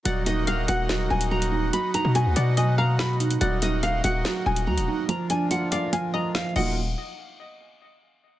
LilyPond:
<<
  \new Staff \with { instrumentName = "Nylon-string guitar" } { \time 4/4 \key ees \minor \tempo 4 = 143 d''8 ees''8 f''8 ges''4 aes''8 bes''4 | b''8 bes''8 aes''8 fis''8 aes''8 bes''8 b''8 r8 | d''8 ees''8 f''8 ges''4 aes''8 bes''4 | bes''8 aes''8 ges''8 f''8 aes''8 bes''8 f''8 ges''8 |
r1 | }
  \new Staff \with { instrumentName = "Synth pluck" } { \time 4/4 \key ees \minor ges''4 f''8 ges''4. r4 | r4. d''8 dis''8 f''8 r4 | ges''4 f''8 ges''4. r4 | r4. d''8 f''8 ees''4 ees''8 |
r1 | }
  \new Staff \with { instrumentName = "Felt piano" } { \time 4/4 \key ees \minor ges8 ees'4 ges'8 ges4 ges8 ees'8 | fis8 dis'8 fis'8 fis''8 fis4 fis8 dis'8 | ges8 ees'4 ges'8 ges4 ges8 ees'8 | f8 d'8 f'8 f''8 f4 f8 <ges bes ees' f'>8 |
r1 | }
  \new Staff \with { instrumentName = "Accordion" } { \time 4/4 \key ees \minor ges'1~ | ges'1~ | ges'1 | r2. r8 <ees bes f' ges'>8 |
r1 | }
  \new Staff \with { instrumentName = "Accordion" } { \time 4/4 \key ees \minor <ees bes ees'>1 | <b dis'>1 | <ees bes ees'>1 | <d f>2.~ <d f>8 r8 |
r1 | }
  \new Staff \with { instrumentName = "808-style bass" } { \clef bass \time 4/4 \key ees \minor ees,,4 d,,16 ees,,16 ees,,4 ees,,4. | r8. b,8 d,16 b,2~ b,8 | ees,,4. ees,,8 r8 ees,,8 ees,16 ees,,16 r8 | r2. r8 ees,,8~ |
ees,,8 r2. r8 | }
  \new DrumStaff \with { instrumentName = "Drums" } \drummode { \time 4/4 hh8 hh8 hh8 hh8 <hh sn>8. hh16 r16 hh8. | hh8 hh8 hh8 hh8 hh4 sn8 hh16 hh16 | hh8 hh8 hh8 hh8 <hh sn>8. hh16 r16 hh8. | hh8 hh8 hh8 hh8 hh4 sn8 cymc8 |
r4 r4 r4 r4 | }
>>